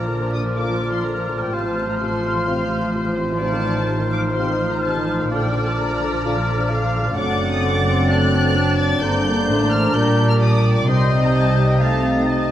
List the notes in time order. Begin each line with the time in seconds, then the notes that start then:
Already playing: A#1 A#2 F3 D4 F4 D5 A#5 F6
0.09 D3 A#4
0.21 F3
0.33 D3 D#6
0.44 F3
0.56 D3 D4 F4 D6
0.68 F3
0.80 D3
0.92 F3 C6
1.04 D3 A#5
1.15 F3
1.28 D3
1.40 F3 G5
1.51 A1 A2 C3 C4 F4 C5 A5
1.64 F3
1.76 C3
1.88 F3 A#5
1.99 C3 A4 C6
2.11 F3
2.22 C3
2.35 F3
2.47 C3 C4 F4 F5
2.59 F3
2.71 C3
2.82 F3
2.93 C3 C5
3.06 F3
3.17 C3
3.29 F3
3.40 C3 F3 C4 D#4 F4 D5 A5 F6
3.53 D#3
3.64 F3
3.77 D#3
3.88 C3 C5
4.01 D#3
4.12 F3 D6
4.26 D#3
4.36 C3 C4 D#4 F4 C6
4.49 D#3
4.61 F3
4.72 D#3 A#5
4.83 C3 A5
4.96 D#3
5.08 F3
5.19 D#3 F5
5.31 A#1 A#2 D3 D4 F4 D5 G5
5.42 F3
5.55 D3
5.66 F3 A5
5.78 D3 A#5
5.90 F3
6.01 D3
6.13 F3
6.24 D3 D4 F4
6.36 F3
6.48 D3
6.59 F3
6.70 D3 F5
6.81 F3
6.93 D3
7.05 F3
7.16 F#1 F#2 F#3 A3 C4 D4 F#5 D6 A6
7.52 D#6
7.63 C4 D6
7.86 C4
8.09 A3 D4 D5 F#6
8.33 D4
8.56 D4
8.78 A6
9.01 G1 G2 D3 A#3 C4 D4 D5 A#5 G6
9.26 A#3
9.48 A1 A2 A3 D4 C5
9.70 F6
9.94 A#1 A#2 G3 A#4 G6
10.29 F6
10.41 G3 D4 D5 D#6
10.76 D6
10.87 C2 C3 G3 C4 D#4 D#5 C6 G6
11.23 A#5
11.34 A5
11.70 G5
11.81 A3 D#4 F5 A5 A6
12.17 A#5
12.29 A3 D#4 D#5 A5